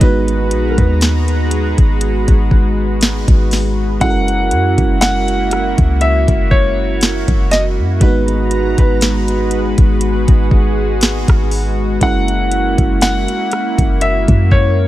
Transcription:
0.00 808-style bass G#1, fm electric piano G#3 B3 D#4 F#4 B4, analog synth pad G#3 F#4 B4 A#5, grand piano B4, kick, closed hi-hat
0.28 closed hi-hat
0.51 808-style bass A#1, closed hi-hat
0.70 grand piano A#4
0.78 808-style bass D#2, grand piano B4, kick, closed hi-hat
1.01 snare, closed hi-hat
1.28 closed hi-hat
1.51 closed hi-hat
1.78 808-style bass G#1, kick, closed hi-hat
2.01 closed hi-hat
2.28 808-style bass G#1, kick, closed hi-hat
2.51 kick
3.01 snare, closed hi-hat
3.28 808-style bass G#1, kick, closed hi-hat
3.51 snare, open hi-hat
4.00 808-style bass F#1, fm electric piano G#3 C#4 E4 F#4 A4, analog synth pad A#3 E4 F#4, grand piano F#5, kick, closed hi-hat
4.10 fm electric piano A#4
4.28 closed hi-hat
4.51 808-style bass F#2, closed hi-hat
4.78 808-style bass F#1, kick, closed hi-hat
5.01 grand piano F#5, snare, closed hi-hat
5.28 closed hi-hat
5.51 cross-stick, closed hi-hat
5.78 808-style bass C#2, kick, closed hi-hat
6.01 grand piano E5, closed hi-hat
6.28 808-style bass F#1, kick, closed hi-hat
6.51 grand piano C#5, kick
7.01 snare, closed hi-hat
7.28 808-style bass F#1, kick, closed hi-hat
7.51 grand piano D#5, snare, closed hi-hat
7.79 808-style bass F#2
8.00 808-style bass G#1, fm electric piano G#3 A#3 D#4 F#4 B4, analog synth pad G#3 B4 A#5, grand piano B4, kick, closed hi-hat
8.08 fm electric piano B3
8.28 closed hi-hat
8.51 closed hi-hat
8.78 808-style bass G#1, grand piano B4, kick, closed hi-hat
9.01 snare, closed hi-hat
9.28 closed hi-hat
9.51 closed hi-hat
9.78 808-style bass G#1, kick, closed hi-hat
10.01 analog synth pad G#4, closed hi-hat
10.28 808-style bass G#1, kick, closed hi-hat
10.51 kick
11.01 snare, closed hi-hat
11.28 808-style bass G#1, kick, cross-stick, closed hi-hat
11.51 open hi-hat
12.01 808-style bass F#1, fm electric piano G#3 C#4 E4 F#4 A#4, analog synth pad A#3 E4, grand piano F#5, kick, closed hi-hat
12.28 closed hi-hat
12.51 closed hi-hat
12.78 808-style bass F#1, kick, closed hi-hat
13.01 grand piano F#5, snare, closed hi-hat
13.28 closed hi-hat
13.52 cross-stick, closed hi-hat
13.78 808-style bass F#1, kick, closed hi-hat
14.01 grand piano E5, closed hi-hat
14.28 808-style bass F#2, kick, closed hi-hat
14.51 grand piano C#5, kick

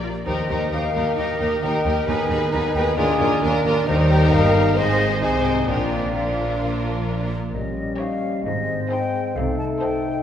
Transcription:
Already playing: harp A#2 F3 D5
0.03 harp A#3, viola section F4
0.26 cello section D#2, double bass section D#2, harp D#3, viola section D#4, violin section G4 A#4, clarinet C5, flute D#5
0.48 double bass section D#2, cello section D#2, harp A#3, viola section D#4, violin section G4 A#4
0.71 double bass section D#2, cello section D#2, french horn section A#3 G4, viola section D#4, violin section G4 A#4, clarinet A#4, flute F5
0.94 double bass section D#2, cello section D#2, viola section D#4, violin section G4 A#4, harp A#4
1.17 cello section D#2, double bass section D#2, viola section D#4, harp D#4, violin section G4 A#4, flute D#5
1.40 double bass section D#2, cello section D#2, harp A#3, viola section D#4, violin section G4 A#4
1.62 double bass section D#2, cello section D#2, french horn section A#3 G4, viola section D#4, violin section G4 A#4, harp D#5, flute G5
1.85 double bass section D#2, cello section D#2, viola section D#4, violin section G4 A#4, harp A#4
2.07 double bass section D#2, cello section D#2, harp D#3, viola section D#4, violin section G#4 B4, flute G#5
2.28 double bass section D#2, cello section D#2, harp B3, viola section D#4, violin section G#4 B4
2.51 double bass section D#2, cello section D#2, french horn section B3 D#4, viola section D#4, violin section G#4 B4, harp D#5, flute A#5
2.73 double bass section D#2, cello section D#2, viola section D#4, violin section G#4 B4, harp B4, flute G5
2.96 double bass section D#2, cello section D#2, harp D#3, viola section D4, violin section F4 A#4, clarinet G#4, flute G#5
3.18 double bass section D#2, cello section D#2, harp A#3, viola section D4, violin section F4 A#4
3.41 double bass section D#2, cello section D#2, french horn section A#3 D4, viola section D4, violin section F4 A#4, clarinet A#4, harp D5
3.64 double bass section D#2, cello section D#2, viola section D4, violin section F4 A#4, harp A#4
3.87 double bass section D#2, cello section D#2, harp D#3, french horn section G3 D#4, viola section D#4, violin section G4 A#4, clarinet C5, flute D#5
4.10 harp A#3, flute G5
4.32 double bass section G1, cello section G2, clarinet A#4, harp D#5, flute F5
4.55 harp A#4
4.76 double bass section G#1, harp G#2, cello section G#2, french horn section G#3 C4, viola section D#4, violin section G#4 C5, clarinet C5, flute D#5
5.00 harp C4
5.22 double bass section C2, cello section C3, french horn section G#3 C4, viola section D#4, violin section G#4 C5, clarinet D#5, harp D#5, flute G#5
5.45 violin section G4
5.68 double bass section A#1, cello section A#2, harp A#2, french horn section F3 D4, viola section D4, violin section F4 A#4, clarinet D5, flute G5
5.92 harp A#3
6.14 french horn section F3 D4, viola section D4, violin section F4 A#4, harp D5, flute F5
6.39 harp A#4
6.62 harp F3
6.86 harp A#3
7.09 harp D5
7.32 harp A#4
7.54 double bass section A#1, cello section A#2, harp A#2, french horn section G3 C#4, flute D#5
7.78 harp C#4
7.99 viola section D#4, violin section G4 C#5, harp D#5, flute F5
8.24 harp C#5
8.45 double bass section G#1, cello section G#2, harp G#2, french horn section G#3 C4, clarinet C5, flute D#5
8.69 harp C4
8.90 viola section D#4, violin section G#4 C5, harp D#5, flute G5
9.14 harp C5
9.35 double bass section C2, harp C3, cello section C3, french horn section A3 D#4, clarinet A4, flute F5
9.59 harp C4, flute A5
9.80 viola section D#4, violin section A4 C5, harp D#5, flute G5
10.05 harp C5

